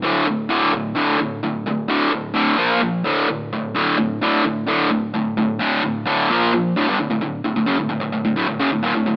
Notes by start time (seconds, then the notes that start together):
0.02 D2 A2 D3
0.26 D2 A2
0.49 D2 A2 D3
0.73 D2 A2
0.96 D2 A2 D3
1.19 D2 A2
1.44 D2 A2
1.67 D2 A2
1.89 D2 A2 D3
2.12 D2 A2
2.34 D2 A2 D3
2.57 A#2 F3 A#3
2.82 A#2 F3
3.04 D2 A2 D3
3.29 D2 A2
3.53 D2 A2
3.75 D2 A2 D3
3.98 D2 A2
4.22 D2 A2 D3
4.45 D2 A2
4.67 D2 A2 D3
4.91 D2 A2
5.14 D2 A2
5.37 D2 A2
5.59 D2 A2 D3
5.83 D2 A2
6.06 D2 A2 D3
6.30 A#2 F3 A#3
6.53 A#2 F3
6.76 D2 A2
6.88 G2 D3
6.99 D2 A2
7.10 D2 A2
7.21 D2 A2
7.44 D2 A2
7.56 D2 A2
7.66 F#2 C#3
7.78 D2 A2
7.89 D2 A2
8.00 D2 A2
8.13 D2 A2
8.25 D2 A2
8.36 D2 A2
8.48 D2 A2
8.60 F#2 C#3
8.72 D2 A2
8.83 D#2 A#2
8.95 D2 A2
9.06 D2 A2